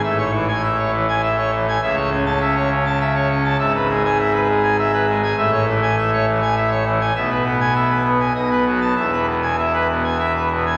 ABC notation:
X:1
M:3/4
L:1/16
Q:1/4=101
K:E
V:1 name="Pipe organ"
e c E, g e c E, g e c E, g | e c C a e c C a e c C a | e B G, g e B G, g e B G, g | e c E, g e c E, g e c E, g |
e B B, g e B B, g d B F, a | e B B,, g e B B,, g e B B,, g |]
V:2 name="Pipe organ" clef=bass
[A,,,A,,]12 | [C,,C,]12 | [G,,,G,,]12 | [A,,,A,,]12 |
[B,,,B,,]8 [B,,,B,,]4 | [E,,,E,,]12 |]